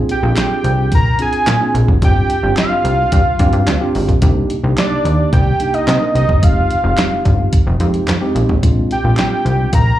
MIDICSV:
0, 0, Header, 1, 5, 480
1, 0, Start_track
1, 0, Key_signature, -3, "minor"
1, 0, Tempo, 550459
1, 1762, Time_signature, 4, 2, 24, 8
1, 8715, End_track
2, 0, Start_track
2, 0, Title_t, "Analog synth lead"
2, 0, Program_c, 0, 81
2, 97, Note_on_c, 0, 79, 99
2, 775, Note_off_c, 0, 79, 0
2, 825, Note_on_c, 0, 82, 110
2, 1038, Note_off_c, 0, 82, 0
2, 1063, Note_on_c, 0, 80, 103
2, 1500, Note_off_c, 0, 80, 0
2, 1782, Note_on_c, 0, 79, 112
2, 2219, Note_off_c, 0, 79, 0
2, 2259, Note_on_c, 0, 77, 116
2, 3416, Note_off_c, 0, 77, 0
2, 4175, Note_on_c, 0, 74, 96
2, 4616, Note_off_c, 0, 74, 0
2, 4650, Note_on_c, 0, 79, 108
2, 5006, Note_on_c, 0, 75, 95
2, 5019, Note_off_c, 0, 79, 0
2, 5364, Note_off_c, 0, 75, 0
2, 5372, Note_on_c, 0, 75, 91
2, 5614, Note_on_c, 0, 77, 95
2, 5627, Note_off_c, 0, 75, 0
2, 6568, Note_off_c, 0, 77, 0
2, 7780, Note_on_c, 0, 79, 104
2, 8456, Note_off_c, 0, 79, 0
2, 8499, Note_on_c, 0, 82, 112
2, 8715, Note_off_c, 0, 82, 0
2, 8715, End_track
3, 0, Start_track
3, 0, Title_t, "Tine electric piano"
3, 0, Program_c, 1, 4
3, 0, Note_on_c, 1, 60, 87
3, 0, Note_on_c, 1, 62, 75
3, 0, Note_on_c, 1, 65, 84
3, 0, Note_on_c, 1, 68, 95
3, 119, Note_off_c, 1, 60, 0
3, 120, Note_off_c, 1, 62, 0
3, 122, Note_off_c, 1, 65, 0
3, 123, Note_off_c, 1, 68, 0
3, 200, Note_on_c, 1, 60, 65
3, 202, Note_on_c, 1, 62, 69
3, 203, Note_on_c, 1, 65, 72
3, 206, Note_on_c, 1, 68, 76
3, 855, Note_off_c, 1, 60, 0
3, 856, Note_off_c, 1, 62, 0
3, 857, Note_off_c, 1, 65, 0
3, 858, Note_off_c, 1, 68, 0
3, 1039, Note_on_c, 1, 60, 66
3, 1041, Note_on_c, 1, 62, 58
3, 1043, Note_on_c, 1, 65, 65
3, 1045, Note_on_c, 1, 68, 67
3, 1321, Note_off_c, 1, 60, 0
3, 1322, Note_off_c, 1, 62, 0
3, 1323, Note_off_c, 1, 65, 0
3, 1324, Note_off_c, 1, 68, 0
3, 1401, Note_on_c, 1, 60, 75
3, 1402, Note_on_c, 1, 62, 72
3, 1405, Note_on_c, 1, 65, 75
3, 1407, Note_on_c, 1, 68, 92
3, 1682, Note_off_c, 1, 60, 0
3, 1683, Note_off_c, 1, 62, 0
3, 1684, Note_off_c, 1, 65, 0
3, 1685, Note_off_c, 1, 68, 0
3, 1757, Note_on_c, 1, 60, 68
3, 1759, Note_on_c, 1, 62, 64
3, 1762, Note_on_c, 1, 65, 59
3, 1766, Note_on_c, 1, 67, 73
3, 2040, Note_off_c, 1, 60, 0
3, 2041, Note_off_c, 1, 62, 0
3, 2043, Note_off_c, 1, 65, 0
3, 2045, Note_off_c, 1, 67, 0
3, 2117, Note_on_c, 1, 60, 71
3, 2118, Note_on_c, 1, 62, 65
3, 2121, Note_on_c, 1, 65, 64
3, 2123, Note_on_c, 1, 67, 69
3, 2774, Note_off_c, 1, 60, 0
3, 2774, Note_off_c, 1, 62, 0
3, 2776, Note_off_c, 1, 65, 0
3, 2777, Note_off_c, 1, 67, 0
3, 2959, Note_on_c, 1, 60, 87
3, 2961, Note_on_c, 1, 62, 74
3, 2965, Note_on_c, 1, 65, 73
3, 2967, Note_on_c, 1, 67, 96
3, 3241, Note_off_c, 1, 60, 0
3, 3242, Note_off_c, 1, 62, 0
3, 3244, Note_off_c, 1, 65, 0
3, 3245, Note_off_c, 1, 67, 0
3, 3318, Note_on_c, 1, 60, 99
3, 3322, Note_on_c, 1, 62, 94
3, 3325, Note_on_c, 1, 67, 107
3, 3326, Note_on_c, 1, 65, 91
3, 3601, Note_off_c, 1, 60, 0
3, 3602, Note_off_c, 1, 62, 0
3, 3604, Note_off_c, 1, 65, 0
3, 3604, Note_off_c, 1, 67, 0
3, 3682, Note_on_c, 1, 58, 70
3, 3684, Note_on_c, 1, 62, 80
3, 3685, Note_on_c, 1, 63, 70
3, 3689, Note_on_c, 1, 67, 95
3, 3963, Note_off_c, 1, 58, 0
3, 3963, Note_off_c, 1, 62, 0
3, 3964, Note_off_c, 1, 63, 0
3, 3966, Note_off_c, 1, 67, 0
3, 4043, Note_on_c, 1, 58, 63
3, 4044, Note_on_c, 1, 62, 66
3, 4048, Note_on_c, 1, 63, 65
3, 4048, Note_on_c, 1, 67, 77
3, 4697, Note_off_c, 1, 58, 0
3, 4697, Note_off_c, 1, 62, 0
3, 4699, Note_off_c, 1, 63, 0
3, 4699, Note_off_c, 1, 67, 0
3, 4885, Note_on_c, 1, 58, 70
3, 4888, Note_on_c, 1, 62, 57
3, 4891, Note_on_c, 1, 63, 60
3, 4892, Note_on_c, 1, 67, 80
3, 5164, Note_off_c, 1, 58, 0
3, 5165, Note_off_c, 1, 62, 0
3, 5167, Note_off_c, 1, 63, 0
3, 5168, Note_off_c, 1, 67, 0
3, 5248, Note_on_c, 1, 58, 77
3, 5249, Note_on_c, 1, 62, 75
3, 5251, Note_on_c, 1, 63, 67
3, 5254, Note_on_c, 1, 70, 93
3, 5525, Note_off_c, 1, 58, 0
3, 5526, Note_off_c, 1, 62, 0
3, 5527, Note_off_c, 1, 63, 0
3, 5529, Note_off_c, 1, 70, 0
3, 5603, Note_on_c, 1, 56, 73
3, 5607, Note_on_c, 1, 60, 54
3, 5607, Note_on_c, 1, 63, 61
3, 5609, Note_on_c, 1, 67, 75
3, 5883, Note_off_c, 1, 56, 0
3, 5885, Note_off_c, 1, 60, 0
3, 5885, Note_off_c, 1, 63, 0
3, 5886, Note_off_c, 1, 67, 0
3, 5962, Note_on_c, 1, 56, 69
3, 5965, Note_on_c, 1, 60, 57
3, 5968, Note_on_c, 1, 63, 60
3, 5972, Note_on_c, 1, 67, 75
3, 6616, Note_off_c, 1, 56, 0
3, 6618, Note_off_c, 1, 60, 0
3, 6619, Note_off_c, 1, 63, 0
3, 6621, Note_off_c, 1, 67, 0
3, 6801, Note_on_c, 1, 56, 76
3, 6803, Note_on_c, 1, 60, 73
3, 6804, Note_on_c, 1, 63, 78
3, 6806, Note_on_c, 1, 67, 91
3, 7082, Note_off_c, 1, 56, 0
3, 7083, Note_off_c, 1, 60, 0
3, 7083, Note_off_c, 1, 63, 0
3, 7085, Note_off_c, 1, 67, 0
3, 7161, Note_on_c, 1, 56, 87
3, 7162, Note_on_c, 1, 60, 98
3, 7163, Note_on_c, 1, 63, 82
3, 7165, Note_on_c, 1, 67, 105
3, 7442, Note_off_c, 1, 56, 0
3, 7442, Note_off_c, 1, 60, 0
3, 7443, Note_off_c, 1, 63, 0
3, 7444, Note_off_c, 1, 67, 0
3, 7519, Note_on_c, 1, 56, 90
3, 7522, Note_on_c, 1, 60, 80
3, 7525, Note_on_c, 1, 62, 71
3, 7526, Note_on_c, 1, 65, 79
3, 7801, Note_off_c, 1, 56, 0
3, 7802, Note_off_c, 1, 60, 0
3, 7804, Note_off_c, 1, 62, 0
3, 7804, Note_off_c, 1, 65, 0
3, 7878, Note_on_c, 1, 56, 67
3, 7881, Note_on_c, 1, 60, 64
3, 7882, Note_on_c, 1, 62, 56
3, 7885, Note_on_c, 1, 65, 82
3, 8534, Note_off_c, 1, 56, 0
3, 8536, Note_off_c, 1, 60, 0
3, 8536, Note_off_c, 1, 62, 0
3, 8538, Note_off_c, 1, 65, 0
3, 8715, End_track
4, 0, Start_track
4, 0, Title_t, "Analog synth bass"
4, 0, Program_c, 2, 38
4, 200, Note_on_c, 2, 34, 114
4, 288, Note_off_c, 2, 34, 0
4, 559, Note_on_c, 2, 36, 93
4, 802, Note_on_c, 2, 34, 82
4, 815, Note_off_c, 2, 36, 0
4, 977, Note_off_c, 2, 34, 0
4, 1280, Note_on_c, 2, 46, 95
4, 1368, Note_off_c, 2, 46, 0
4, 1522, Note_on_c, 2, 34, 98
4, 1610, Note_off_c, 2, 34, 0
4, 1640, Note_on_c, 2, 29, 83
4, 1729, Note_off_c, 2, 29, 0
4, 1762, Note_on_c, 2, 31, 101
4, 1937, Note_off_c, 2, 31, 0
4, 2122, Note_on_c, 2, 31, 101
4, 2210, Note_off_c, 2, 31, 0
4, 2480, Note_on_c, 2, 36, 88
4, 2656, Note_off_c, 2, 36, 0
4, 2726, Note_on_c, 2, 43, 91
4, 2812, Note_off_c, 2, 43, 0
4, 2960, Note_on_c, 2, 43, 98
4, 3049, Note_off_c, 2, 43, 0
4, 3080, Note_on_c, 2, 43, 89
4, 3169, Note_off_c, 2, 43, 0
4, 3201, Note_on_c, 2, 38, 102
4, 3289, Note_off_c, 2, 38, 0
4, 3447, Note_on_c, 2, 32, 98
4, 3533, Note_off_c, 2, 32, 0
4, 3562, Note_on_c, 2, 34, 81
4, 3650, Note_off_c, 2, 34, 0
4, 3682, Note_on_c, 2, 36, 115
4, 3857, Note_off_c, 2, 36, 0
4, 4042, Note_on_c, 2, 36, 106
4, 4130, Note_off_c, 2, 36, 0
4, 4402, Note_on_c, 2, 39, 89
4, 4577, Note_off_c, 2, 39, 0
4, 4647, Note_on_c, 2, 36, 93
4, 4820, Note_off_c, 2, 36, 0
4, 5121, Note_on_c, 2, 48, 115
4, 5209, Note_off_c, 2, 48, 0
4, 5362, Note_on_c, 2, 36, 81
4, 5450, Note_off_c, 2, 36, 0
4, 5485, Note_on_c, 2, 31, 74
4, 5605, Note_on_c, 2, 29, 101
4, 5618, Note_off_c, 2, 31, 0
4, 5779, Note_off_c, 2, 29, 0
4, 5963, Note_on_c, 2, 29, 104
4, 6050, Note_off_c, 2, 29, 0
4, 6324, Note_on_c, 2, 31, 98
4, 6498, Note_off_c, 2, 31, 0
4, 6685, Note_on_c, 2, 29, 107
4, 6772, Note_off_c, 2, 29, 0
4, 6805, Note_on_c, 2, 41, 98
4, 6979, Note_off_c, 2, 41, 0
4, 7044, Note_on_c, 2, 41, 90
4, 7131, Note_off_c, 2, 41, 0
4, 7284, Note_on_c, 2, 34, 90
4, 7371, Note_off_c, 2, 34, 0
4, 7406, Note_on_c, 2, 32, 83
4, 7525, Note_on_c, 2, 34, 92
4, 7538, Note_off_c, 2, 32, 0
4, 7699, Note_off_c, 2, 34, 0
4, 7884, Note_on_c, 2, 34, 92
4, 7971, Note_off_c, 2, 34, 0
4, 8242, Note_on_c, 2, 36, 90
4, 8417, Note_off_c, 2, 36, 0
4, 8485, Note_on_c, 2, 34, 94
4, 8659, Note_off_c, 2, 34, 0
4, 8715, End_track
5, 0, Start_track
5, 0, Title_t, "Drums"
5, 80, Note_on_c, 9, 42, 75
5, 167, Note_off_c, 9, 42, 0
5, 315, Note_on_c, 9, 39, 79
5, 320, Note_on_c, 9, 42, 90
5, 328, Note_on_c, 9, 38, 99
5, 330, Note_off_c, 9, 39, 0
5, 330, Note_on_c, 9, 39, 83
5, 407, Note_off_c, 9, 42, 0
5, 415, Note_off_c, 9, 38, 0
5, 418, Note_off_c, 9, 39, 0
5, 561, Note_on_c, 9, 42, 70
5, 648, Note_off_c, 9, 42, 0
5, 799, Note_on_c, 9, 42, 96
5, 802, Note_on_c, 9, 36, 110
5, 886, Note_off_c, 9, 42, 0
5, 889, Note_off_c, 9, 36, 0
5, 1036, Note_on_c, 9, 42, 79
5, 1123, Note_off_c, 9, 42, 0
5, 1156, Note_on_c, 9, 42, 51
5, 1244, Note_off_c, 9, 42, 0
5, 1279, Note_on_c, 9, 39, 83
5, 1281, Note_on_c, 9, 42, 90
5, 1289, Note_on_c, 9, 38, 122
5, 1292, Note_off_c, 9, 39, 0
5, 1292, Note_on_c, 9, 39, 101
5, 1368, Note_off_c, 9, 42, 0
5, 1376, Note_off_c, 9, 38, 0
5, 1379, Note_off_c, 9, 39, 0
5, 1526, Note_on_c, 9, 42, 75
5, 1613, Note_off_c, 9, 42, 0
5, 1642, Note_on_c, 9, 36, 78
5, 1730, Note_off_c, 9, 36, 0
5, 1762, Note_on_c, 9, 42, 100
5, 1763, Note_on_c, 9, 36, 119
5, 1849, Note_off_c, 9, 42, 0
5, 1850, Note_off_c, 9, 36, 0
5, 2004, Note_on_c, 9, 42, 73
5, 2091, Note_off_c, 9, 42, 0
5, 2236, Note_on_c, 9, 39, 81
5, 2243, Note_on_c, 9, 42, 78
5, 2250, Note_on_c, 9, 38, 99
5, 2253, Note_off_c, 9, 39, 0
5, 2253, Note_on_c, 9, 39, 80
5, 2330, Note_off_c, 9, 42, 0
5, 2337, Note_off_c, 9, 38, 0
5, 2340, Note_off_c, 9, 39, 0
5, 2484, Note_on_c, 9, 42, 77
5, 2571, Note_off_c, 9, 42, 0
5, 2721, Note_on_c, 9, 42, 96
5, 2724, Note_on_c, 9, 36, 126
5, 2808, Note_off_c, 9, 42, 0
5, 2811, Note_off_c, 9, 36, 0
5, 2959, Note_on_c, 9, 42, 82
5, 2962, Note_on_c, 9, 36, 88
5, 3046, Note_off_c, 9, 42, 0
5, 3050, Note_off_c, 9, 36, 0
5, 3076, Note_on_c, 9, 42, 48
5, 3163, Note_off_c, 9, 42, 0
5, 3200, Note_on_c, 9, 42, 83
5, 3203, Note_on_c, 9, 39, 90
5, 3208, Note_on_c, 9, 38, 106
5, 3211, Note_off_c, 9, 39, 0
5, 3211, Note_on_c, 9, 39, 85
5, 3287, Note_off_c, 9, 42, 0
5, 3295, Note_off_c, 9, 38, 0
5, 3298, Note_off_c, 9, 39, 0
5, 3444, Note_on_c, 9, 46, 72
5, 3532, Note_off_c, 9, 46, 0
5, 3562, Note_on_c, 9, 36, 73
5, 3565, Note_on_c, 9, 42, 54
5, 3649, Note_off_c, 9, 36, 0
5, 3652, Note_off_c, 9, 42, 0
5, 3678, Note_on_c, 9, 42, 100
5, 3682, Note_on_c, 9, 36, 117
5, 3765, Note_off_c, 9, 42, 0
5, 3769, Note_off_c, 9, 36, 0
5, 3924, Note_on_c, 9, 42, 72
5, 4011, Note_off_c, 9, 42, 0
5, 4162, Note_on_c, 9, 39, 85
5, 4164, Note_on_c, 9, 42, 75
5, 4172, Note_on_c, 9, 38, 98
5, 4175, Note_off_c, 9, 39, 0
5, 4175, Note_on_c, 9, 39, 79
5, 4252, Note_off_c, 9, 42, 0
5, 4259, Note_off_c, 9, 38, 0
5, 4262, Note_off_c, 9, 39, 0
5, 4407, Note_on_c, 9, 42, 72
5, 4494, Note_off_c, 9, 42, 0
5, 4646, Note_on_c, 9, 36, 125
5, 4646, Note_on_c, 9, 42, 85
5, 4733, Note_off_c, 9, 36, 0
5, 4733, Note_off_c, 9, 42, 0
5, 4883, Note_on_c, 9, 42, 83
5, 4970, Note_off_c, 9, 42, 0
5, 5005, Note_on_c, 9, 42, 47
5, 5092, Note_off_c, 9, 42, 0
5, 5125, Note_on_c, 9, 39, 88
5, 5125, Note_on_c, 9, 42, 79
5, 5133, Note_on_c, 9, 38, 127
5, 5136, Note_off_c, 9, 39, 0
5, 5136, Note_on_c, 9, 39, 97
5, 5213, Note_off_c, 9, 42, 0
5, 5221, Note_off_c, 9, 38, 0
5, 5223, Note_off_c, 9, 39, 0
5, 5368, Note_on_c, 9, 42, 72
5, 5455, Note_off_c, 9, 42, 0
5, 5485, Note_on_c, 9, 36, 86
5, 5573, Note_off_c, 9, 36, 0
5, 5605, Note_on_c, 9, 42, 107
5, 5606, Note_on_c, 9, 36, 126
5, 5693, Note_off_c, 9, 36, 0
5, 5693, Note_off_c, 9, 42, 0
5, 5847, Note_on_c, 9, 42, 67
5, 5935, Note_off_c, 9, 42, 0
5, 6081, Note_on_c, 9, 39, 81
5, 6084, Note_on_c, 9, 42, 81
5, 6092, Note_on_c, 9, 38, 101
5, 6094, Note_off_c, 9, 39, 0
5, 6094, Note_on_c, 9, 39, 83
5, 6171, Note_off_c, 9, 42, 0
5, 6179, Note_off_c, 9, 38, 0
5, 6182, Note_off_c, 9, 39, 0
5, 6325, Note_on_c, 9, 36, 90
5, 6327, Note_on_c, 9, 42, 68
5, 6412, Note_off_c, 9, 36, 0
5, 6414, Note_off_c, 9, 42, 0
5, 6563, Note_on_c, 9, 42, 104
5, 6566, Note_on_c, 9, 36, 113
5, 6650, Note_off_c, 9, 42, 0
5, 6653, Note_off_c, 9, 36, 0
5, 6802, Note_on_c, 9, 42, 76
5, 6889, Note_off_c, 9, 42, 0
5, 6922, Note_on_c, 9, 42, 43
5, 7009, Note_off_c, 9, 42, 0
5, 7040, Note_on_c, 9, 39, 83
5, 7047, Note_on_c, 9, 42, 78
5, 7055, Note_on_c, 9, 38, 115
5, 7057, Note_off_c, 9, 39, 0
5, 7057, Note_on_c, 9, 39, 96
5, 7134, Note_off_c, 9, 42, 0
5, 7142, Note_off_c, 9, 38, 0
5, 7145, Note_off_c, 9, 39, 0
5, 7288, Note_on_c, 9, 42, 83
5, 7375, Note_off_c, 9, 42, 0
5, 7406, Note_on_c, 9, 36, 77
5, 7493, Note_off_c, 9, 36, 0
5, 7526, Note_on_c, 9, 36, 116
5, 7526, Note_on_c, 9, 42, 92
5, 7613, Note_off_c, 9, 36, 0
5, 7614, Note_off_c, 9, 42, 0
5, 7768, Note_on_c, 9, 42, 70
5, 7855, Note_off_c, 9, 42, 0
5, 7994, Note_on_c, 9, 39, 83
5, 8004, Note_on_c, 9, 42, 76
5, 8012, Note_on_c, 9, 38, 96
5, 8015, Note_off_c, 9, 39, 0
5, 8015, Note_on_c, 9, 39, 79
5, 8092, Note_off_c, 9, 42, 0
5, 8099, Note_off_c, 9, 38, 0
5, 8102, Note_off_c, 9, 39, 0
5, 8248, Note_on_c, 9, 42, 70
5, 8335, Note_off_c, 9, 42, 0
5, 8483, Note_on_c, 9, 42, 96
5, 8485, Note_on_c, 9, 36, 111
5, 8570, Note_off_c, 9, 42, 0
5, 8572, Note_off_c, 9, 36, 0
5, 8715, End_track
0, 0, End_of_file